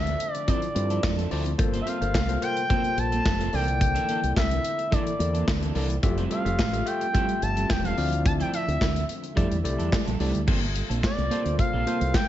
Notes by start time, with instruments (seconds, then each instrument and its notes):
Already playing: fingered electric bass D2, analog synth pad D3 F3 C4 D4 A4, analog synth lead E5
0.07 muted clean electric guitar stroke, closed hi-hat
0.20 closed hi-hat
0.33 analog synth lead D5, muted clean electric guitar stroke, closed hi-hat
0.47 clean electric guitar F3 C4 E4 A4, tine electric piano C4 E4 F4 D5, analog synth lead D5, kick, closed hi-hat
0.62 muted clean electric guitar stroke, closed hi-hat
0.75 fingered electric bass G2, tine electric piano C4 E4 F4 D5, muted clean electric guitar stroke, closed hi-hat
0.90 clean electric guitar F3 C4 E4 A4, closed hi-hat
1.03 fingered electric bass F2, kick, snare, clap
1.18 clean electric guitar F3 C4 E4 A4, closed hi-hat
1.31 fingered electric bass D2, clean electric guitar F3 C4 E4 A4, tine electric piano C4 E4 F4 D5, open hi-hat
1.46 muted clean electric guitar stroke, closed hi-hat
1.58 fingered electric bass G1, analog synth pad C3 G3 A#3 F4, tine electric piano A#3 F4 A4 C5, muted clean electric guitar stroke, kick, closed hi-hat
1.73 clean electric guitar A#3 C4 F4 A4, closed hi-hat
1.81 analog synth lead E5
1.86 tine electric piano A#3 F4 A4 C5, clean electric guitar A#3 C4 F4 A4, analog synth lead F5, closed hi-hat
2.01 fingered electric bass G1, tine electric piano A#3 F4 A4 C5, muted clean electric guitar stroke, closed hi-hat
2.14 fingered electric bass C2, muted clean electric guitar stroke, kick, snare, clap
2.28 tine electric piano A#3 F4 A4 C5, muted clean electric guitar stroke, closed hi-hat
2.41 tine electric piano A#3 F4 A4 C5, analog synth lead G5, closed hi-hat
2.57 muted clean electric guitar stroke, closed hi-hat
2.69 tine electric piano A#3 F4 A4 C5, clean electric guitar A#3 C4 F4 A4, kick, closed hi-hat
2.84 muted clean electric guitar stroke, closed hi-hat
2.97 fingered electric bass A#1, analog synth lead A5, muted clean electric guitar stroke, closed hi-hat
3.12 clean electric guitar A#3 C4 F4 A4, closed hi-hat
3.25 fingered electric bass F1, kick, snare, clap
3.39 clean electric guitar A#3 C4 F4 A4, closed hi-hat
3.52 fingered electric bass C2, analog synth pad D3 C4 E4, clean electric guitar E3 A#3 D4 A4, tine electric piano A#3 E4 A4 D5, analog synth lead G5, open hi-hat
3.67 muted clean electric guitar stroke, closed hi-hat
3.81 muted clean electric guitar stroke, kick, closed hi-hat
3.95 clean electric guitar E3 A#3 D4 A4, closed hi-hat
4.08 clean electric guitar E3 A#3 D4 A4, closed hi-hat
4.23 fingered electric bass C2, muted clean electric guitar stroke, closed hi-hat
4.36 fingered electric bass C2, analog synth lead E5, muted clean electric guitar stroke, kick, snare, clap
4.51 muted clean electric guitar stroke, closed hi-hat
4.64 closed hi-hat
4.78 muted clean electric guitar stroke, closed hi-hat
4.91 clean electric guitar E3 A#3 D4 A4, tine electric piano A#3 E4 A4 D5, analog synth lead D5, kick, closed hi-hat
5.06 muted clean electric guitar stroke, closed hi-hat
5.19 fingered electric bass E2, tine electric piano A#3 E4 A4 D5, muted clean electric guitar stroke, closed hi-hat
5.34 clean electric guitar E3 A#3 D4 A4, closed hi-hat
5.48 fingered electric bass D2, kick, snare, clap
5.62 clean electric guitar E3 A#3 D4 A4, closed hi-hat
5.75 fingered electric bass C2, clean electric guitar E3 A#3 D4 A4, tine electric piano A#3 E4 A4 D5, open hi-hat
5.90 muted clean electric guitar stroke, closed hi-hat
6.03 fingered electric bass F1, analog synth pad F3 G3 F4, tine electric piano A3 F4 G4 E5, muted clean electric guitar stroke, kick, closed hi-hat
6.18 clean electric guitar G3 C4 E4 A4, closed hi-hat
6.30 clean electric guitar G3 C4 E4 A4, tine electric piano A3 F4 G4 E5, analog synth lead F5, closed hi-hat
6.44 fingered electric bass F1, tine electric piano A3 F4 G4 E5, muted clean electric guitar stroke, closed hi-hat
6.59 fingered electric bass A1, kick, snare, clap
6.72 tine electric piano A3 F4 G4 E5, muted clean electric guitar stroke, closed hi-hat
6.85 tine electric piano A3 F4 G4 E5, analog synth lead G5, closed hi-hat
7.01 muted clean electric guitar stroke, closed hi-hat
7.13 clean electric guitar G3 C4 E4 A4, tine electric piano A3 F4 G4 E5, kick, closed hi-hat
7.28 muted clean electric guitar stroke, closed hi-hat
7.42 fingered electric bass G1, analog synth lead A5, muted clean electric guitar stroke, closed hi-hat
7.56 clean electric guitar G3 C4 E4 A4, closed hi-hat
7.70 fingered electric bass E1, analog synth lead G5, muted clean electric guitar stroke, kick, snare, clap
7.84 clean electric guitar G3 C4 E4 A4, analog synth lead F5, closed hi-hat
7.97 fingered electric bass D2, analog synth pad D3 F3 A3 E5, clean electric guitar F3 C4 E4 A4, tine electric piano C4 E4 F4 D5, open hi-hat
8.12 muted clean electric guitar stroke, closed hi-hat
8.25 analog synth lead A5, muted clean electric guitar stroke, kick, closed hi-hat
8.40 clean electric guitar F3 C4 E4 A4, analog synth lead G5, closed hi-hat
8.53 clean electric guitar F3 C4 E4 A4, analog synth lead E5, closed hi-hat
8.68 fingered electric bass D2, muted clean electric guitar stroke, closed hi-hat
8.80 fingered electric bass D2, muted clean electric guitar stroke, kick, snare, clap
8.95 muted clean electric guitar stroke, closed hi-hat
9.09 closed hi-hat
9.23 muted clean electric guitar stroke, closed hi-hat
9.35 fingered electric bass F2, clean electric guitar G3 D4 E4 A4, analog synth pad G3, tine electric piano A3 E4 G4 D5, kick, closed hi-hat
9.51 fingered electric bass E2, muted clean electric guitar stroke, closed hi-hat
9.64 fingered electric bass C2, tine electric piano A3 E4 G4 D5, muted clean electric guitar stroke, closed hi-hat
9.78 fingered electric bass E2, clean electric guitar G3 D4 E4 A4, closed hi-hat
9.91 muted clean electric guitar stroke, kick, snare, clap
10.06 fingered electric bass A#1, clean electric guitar G3 D4 E4 A4, closed hi-hat
10.19 fingered electric bass C2, clean electric guitar G3 D4 E4 A4, tine electric piano A3 E4 G4 D5, open hi-hat
10.34 fingered electric bass D2, muted clean electric guitar stroke, closed hi-hat
10.47 fingered electric bass G1, analog synth pad C3 G3 A#3 F4 A4, clean electric guitar A#3 C4 F4 A4, kick, crash
10.62 muted clean electric guitar stroke
10.75 muted clean electric guitar stroke, closed hi-hat
10.89 fingered electric bass A#1, clean electric guitar A#3 C4 F4 A4, closed hi-hat
11.03 analog synth lead D5, kick, snare, clap
11.17 fingered electric bass C2, muted clean electric guitar stroke, closed hi-hat
11.30 clean electric guitar A#3 C4 F4 A4, tine electric piano A#3 F4 A4 C5, closed hi-hat
11.45 fingered electric bass D2, muted clean electric guitar stroke, closed hi-hat
11.58 analog synth lead F5, muted clean electric guitar stroke, kick, closed hi-hat
11.73 fingered electric bass A#1, clean electric guitar A#3 C4 F4 A4
11.86 clean electric guitar A#3 C4 F4 A4, tine electric piano A#3 F4 A4 C5, closed hi-hat
12.01 fingered electric bass C2, muted clean electric guitar stroke, closed hi-hat
12.14 analog synth lead G5, muted clean electric guitar stroke, kick, snare, clap